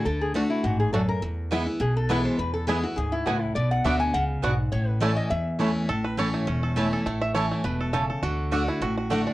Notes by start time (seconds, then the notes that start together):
0.05 D2 D3 A4
0.21 G#4
0.34 D3 A3 D4 F#4
0.50 E4
0.64 A1 G#2 F#4
0.80 G#4
0.93 F#2 A3 D4 F#4 A4
1.09 A#4
1.22 E2
1.51 E3 G#3 B3 E4 B4 G#5
1.66 B3 E4
1.80 B1 B2 G#4
1.96 A4
2.09 E3 G#3 B3 E4 B4 G#5
2.25 C5
2.38 E2 B4
2.54 A4
2.67 E3 G#3 B3 E4 G#4 B4 G#5
2.83 B3 E4 F#4
2.96 D2 G#2 G#4
3.12 E4
3.26 C#2 A2 B3 E4 F#4 B4 G#5
3.41 E4
3.55 B1 B2 D5
3.71 F#5
3.84 D2 D3 B3 D4 F#4 D5 E5 F#5
4.00 G#5
4.13 C#2 C#3 F#5
4.42 B1 G#2 B3 D4 F#4 D5 F#5
4.72 A1 A2 C#5
4.88 B4
5.00 E3 A3 C#4 E4 C#5 D5 A5
5.16 D#5
5.30 E2 E5
5.59 E3 A3 C#4 E4 C#5 A5
5.89 A1 A2 A4
6.04 B4
6.17 E3 A3 C#4 E4 C#5 A5
6.34 A3
6.47 E1 E2 C#4
6.63 A4
6.76 E3 A3 C#4 E4 C#5 A5
6.93 A4
7.06 A1 A2 A3
7.21 E5
7.34 E3 A3 C#4 E4 C#5 A5
7.51 A3
7.64 E1 B2 B4
7.80 A4
7.93 C#3 A3 E4 A4 C#5 A5
8.10 A4
8.22 D2 D3 F#4
8.51 D3 A3 D4 F#4 D5 F#5
8.68 E4
8.81 A1 A2 F#4
8.98 F#4
9.10 D3 A3 D4 F#4 D5 F#5
9.27 D4